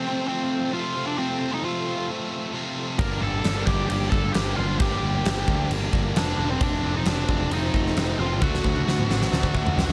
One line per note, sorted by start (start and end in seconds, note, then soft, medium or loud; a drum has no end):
0.00 1.16 F2 medium
0.00 0.28 C3 medium
0.00 0.24 C4 medium
0.00 2.95 F4 medium
0.00 2.96 A4 medium
0.00 0.26 C5 medium
0.00 2.95 C5 medium
0.00 4.76 A5 medium
0.04 0.72 F3 medium
0.04 0.74 A3 medium
0.04 0.74 C4 medium
0.28 0.70 C4 medium
0.28 0.70 C5 medium
0.72 1.16 C3 medium
0.72 0.97 F3 medium
0.72 0.96 A3 medium
0.72 0.94 C4 medium
0.72 1.05 F4 loud
0.72 1.05 F5 medium
0.95 1.17 F3 medium
0.95 1.19 A3 medium
0.95 1.19 C4 medium
1.06 1.17 D4 medium
1.06 1.18 D5 medium
1.17 1.61 F2 loud
1.17 1.62 C3 medium
1.17 1.63 F3 medium
1.17 1.65 A3 loud
1.17 1.50 C4 medium
1.17 1.64 C4 loud
1.17 1.53 C5 loud
1.53 1.63 D#4 medium
1.53 1.64 D#5 loud
1.62 2.08 F2 loud
1.62 2.09 C3 loud
1.62 1.87 F3 loud
1.62 1.87 A3 loud
1.62 1.85 C4 loud
1.62 2.06 F4 medium
1.62 2.06 F5 medium
1.86 2.53 F3 medium
1.86 2.54 A3 medium
1.86 2.55 C4 medium
2.53 2.97 C3 medium
2.53 2.78 F3 medium
2.53 2.77 A3 medium
2.53 2.75 C4 medium
2.76 2.99 F3 medium
2.76 3.01 A3 medium
2.76 2.98 C4 medium
2.99 3.17 G1 loud
2.99 3.68 G2 loud
2.99 3.43 D3 loud
2.99 3.23 G3 loud
2.99 6.58 A#3 medium
2.99 3.22 A#3 loud
2.99 3.21 D4 loud
2.99 6.58 G4 medium
2.99 3.20 A#4 medium
2.99 6.58 D5 medium
2.99 3.21 A#5 loud
2.99 kick loud
2.99 crash medium
3.21 3.40 G1 loud
3.21 3.44 G3 medium
3.21 3.45 A#3 medium
3.21 3.46 D4 medium
3.21 3.64 A4 medium
3.21 3.68 A5 loud
3.44 3.63 G1 medium
3.44 4.78 G2 loud
3.44 3.67 D3 medium
3.44 3.68 G3 medium
3.44 3.67 A#3 medium
3.44 3.66 D4 medium
3.44 snare loud
3.44 crash medium
3.66 3.85 G1 medium
3.66 4.13 G2 medium
3.66 3.88 D3 medium
3.66 3.89 G3 medium
3.66 3.90 A#3 loud
3.66 3.90 D4 loud
3.66 3.88 G4 medium
3.66 3.86 G5 medium
3.66 kick medium
3.66 snare soft
3.87 4.08 G1 medium
3.87 4.12 D3 medium
3.87 4.11 G3 medium
3.87 4.11 A#3 medium
3.87 4.10 D4 medium
3.87 4.11 G4 medium
3.87 4.09 G5 loud
3.87 crash medium
4.09 4.30 G1 medium
4.09 4.33 D3 medium
4.09 4.34 G3 medium
4.09 4.34 A#3 medium
4.09 4.35 D4 loud
4.09 4.33 A4 medium
4.09 4.32 A5 loud
4.09 kick loud
4.14 4.58 G2 medium
4.32 4.53 G1 medium
4.32 4.79 D3 medium
4.32 4.59 G3 medium
4.32 4.58 A#3 medium
4.32 4.56 G4 medium
4.32 4.55 G5 loud
4.32 snare loud
4.32 crash medium
4.37 4.56 D4 medium
4.56 4.76 G1 medium
4.56 4.79 A#3 medium
4.56 4.80 D4 medium
4.56 4.79 F4 medium
4.56 4.78 F5 medium
4.60 4.79 G3 medium
4.79 4.98 G1 loud
4.79 5.25 G2 loud
4.79 5.23 D3 loud
4.79 5.03 G3 loud
4.79 5.02 A#3 loud
4.79 5.01 D4 loud
4.79 5.67 G4 medium
4.79 5.66 G5 medium
4.79 6.58 A#5 medium
4.79 kick loud
4.79 crash medium
5.02 5.21 G1 medium
5.02 5.24 G3 medium
5.02 5.25 A#3 medium
5.02 5.26 D4 medium
5.25 5.43 G1 medium
5.25 5.70 G2 loud
5.25 5.47 D3 medium
5.25 5.47 G3 medium
5.25 5.47 A#3 medium
5.25 5.45 D4 medium
5.25 snare loud
5.25 crash medium
5.47 5.66 D2 medium
5.47 5.94 G2 medium
5.47 5.68 D3 medium
5.47 5.69 G3 medium
5.47 5.70 A#3 medium
5.47 5.70 D4 medium
5.47 kick medium
5.69 5.88 G1 loud
5.69 5.94 D3 medium
5.69 5.93 G3 medium
5.69 5.92 A#3 medium
5.69 5.92 D4 medium
5.69 crash medium
5.93 6.11 G1 medium
5.93 6.39 G2 medium
5.93 6.14 D3 medium
5.93 6.15 G3 medium
5.93 6.15 A#3 medium
5.93 6.16 D4 loud
5.93 kick loud
6.15 6.33 F1 loud
6.15 6.59 D3 medium
6.15 6.39 G3 medium
6.15 6.37 A#3 medium
6.15 6.48 D4 medium
6.15 6.36 D4 medium
6.15 6.50 D5 medium
6.15 snare loud
6.15 crash medium
6.37 6.56 E1 medium
6.37 6.60 G3 medium
6.37 6.60 A#3 medium
6.37 6.59 D4 medium
6.50 6.60 C4 medium
6.50 6.61 C5 medium
6.60 6.79 F1 loud
6.60 7.06 F2 loud
6.60 7.05 C3 loud
6.60 6.84 F3 loud
6.60 6.84 A3 loud
6.60 6.82 C4 loud
6.60 6.93 D4 medium
6.60 8.40 F4 medium
6.60 9.92 A4 medium
6.60 8.39 C5 medium
6.60 6.96 D5 medium
6.60 9.92 A5 medium
6.60 kick loud
6.60 crash medium
6.83 7.01 F1 medium
6.83 7.05 F3 medium
6.83 7.07 A3 medium
6.83 7.07 C4 medium
6.97 7.06 D#4 medium
6.97 7.08 D#5 medium
7.05 7.24 F1 medium
7.05 7.51 F2 loud
7.05 7.29 C3 medium
7.05 7.29 F3 medium
7.05 7.29 A3 medium
7.05 7.27 C4 medium
7.05 7.49 D4 medium
7.05 7.52 D5 medium
7.05 snare loud
7.05 crash medium
7.29 7.47 F1 loud
7.29 7.75 F2 medium
7.29 7.50 C3 medium
7.29 7.51 F3 medium
7.29 7.53 A3 loud
7.29 7.53 C4 loud
7.29 kick medium
7.51 7.69 F1 medium
7.51 7.75 C3 medium
7.51 7.74 F3 medium
7.51 7.75 A3 medium
7.51 7.73 C4 loud
7.51 8.16 D#4 medium
7.51 8.16 D#5 loud
7.51 crash medium
7.74 7.92 F1 medium
7.74 8.20 F2 medium
7.74 7.96 C3 medium
7.74 7.96 F3 medium
7.74 7.98 A3 medium
7.74 7.98 C4 medium
7.74 kick medium
7.87 snare soft
7.96 8.14 F1 medium
7.96 8.40 C3 medium
7.96 8.20 F3 medium
7.96 8.20 A3 medium
7.96 8.18 C4 medium
7.96 snare loud
7.96 crash medium
8.18 8.42 F1 medium
8.18 8.41 F3 medium
8.18 8.43 A3 medium
8.18 8.40 C4 medium
8.18 8.40 F4 medium
8.18 8.42 F5 loud
8.41 8.59 D2 loud
8.41 8.85 D3 loud
8.41 8.64 F#3 medium
8.41 8.64 A3 loud
8.41 8.62 D4 loud
8.41 9.92 F#4 medium
8.41 9.92 D5 medium
8.41 9.92 F#5 loud
8.41 kick loud
8.41 high tom medium
8.54 snare medium
8.64 8.82 D2 medium
8.64 8.86 F#3 medium
8.64 8.86 A3 medium
8.64 8.87 D4 medium
8.64 kick medium
8.76 high tom medium
8.86 9.05 D2 medium
8.86 9.09 D3 medium
8.86 9.08 F#3 medium
8.86 9.08 A3 medium
8.86 9.07 D4 medium
8.86 snare medium
8.99 mid tom medium
9.08 9.27 A1 medium
9.08 9.29 D3 medium
9.08 9.30 F#3 medium
9.08 9.31 A3 medium
9.08 9.32 D4 medium
9.08 snare medium
9.22 snare medium
9.30 9.50 D2 medium
9.30 9.54 D3 medium
9.30 9.53 F#3 medium
9.30 9.52 A3 medium
9.30 9.51 D4 medium
9.30 snare loud
9.43 kick medium
9.53 9.72 D2 medium
9.53 9.74 D3 medium
9.53 9.75 F#3 medium
9.53 9.75 A3 medium
9.53 9.76 D4 medium
9.53 kick medium
9.66 mid tom medium
9.75 9.92 C2 medium
9.75 9.92 D3 medium
9.75 9.92 F#3 medium
9.75 9.92 A3 medium
9.75 9.92 D4 medium
9.75 snare loud